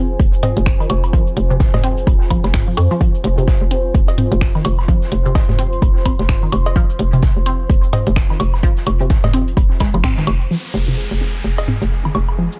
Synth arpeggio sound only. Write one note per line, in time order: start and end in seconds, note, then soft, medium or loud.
0.43 0.47 C4 medium
0.80 0.82 D#3 medium
1.13 1.17 F3 loud
1.50 1.52 C3 loud
1.84 1.87 C4 medium
2.30 2.36 F3 medium
2.68 2.70 F3 medium
2.91 2.94 F3 loud
3.01 3.05 F3 loud
3.38 3.40 C3 loud
3.71 3.75 C4 medium
4.18 4.22 C4 medium
4.55 4.57 D#3 medium
4.88 4.92 F3 loud
5.26 5.28 C3 loud
5.59 5.62 C4 medium
6.06 6.09 C4 medium
6.43 6.45 D#3 medium
6.76 6.80 F3 loud
7.13 7.15 C3 loud
7.46 7.50 C4 medium
7.93 7.97 C4 medium
8.30 8.32 D#3 medium
8.63 8.67 F3 loud
9.01 9.03 C3 loud
9.34 9.37 C4 medium
9.80 9.84 G#3 medium
9.94 9.97 F3 medium
10.04 10.10 C4 medium
10.18 10.20 D#3 medium
10.51 10.55 F3 loud
10.88 10.90 C3 loud
11.21 11.25 C4 medium
11.68 11.72 C4 medium
12.05 12.07 D#3 medium
12.38 12.42 F3 loud